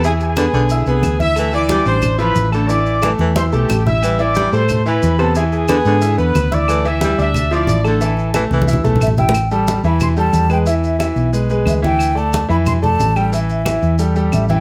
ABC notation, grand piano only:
X:1
M:4/4
L:1/8
Q:1/4=181
K:Am
V:1 name="Grand piano"
[E,Ee]2 [B,Bb]2 [Eee'] [B,Bb]2 [Eee'] | [A,Aa] [E,Ee]2 [Ddd']2 [F,Ee]2 [A,Aa] | [E,Ee]2 [A,Aa]2 [Eee'] [A,Aa]2 [Eee'] | [G,Gg] [E,Ee]2 [A,Aa]2 [E,Ee]2 [B,Bb] |
[E,Ee]2 [B,Bb]2 [Eee'] [B,Bb]2 [Eee'] | [A,Aa] [E,Ee]2 [Ddd']2 [F,Ee]2 [A,Aa] | [E,Ee]2 [A,Aa]2 [Eee'] [A,Aa]2 [Eee'] | z [G,GA]2 [E,Ee]2 [G,GA]2 [^G,^GB] |
[E,Ee]2 [E,Ee]2 [^G,^GB] [G,GB]2 [E,Ee]- | [E,Ee] [A,Ad]2 [E,Ee]2 [A,Ad]2 [G,GA] | [E,Ee]2 [E,Ee]2 [G,GA] [G,GA]2 [E,Ee] |]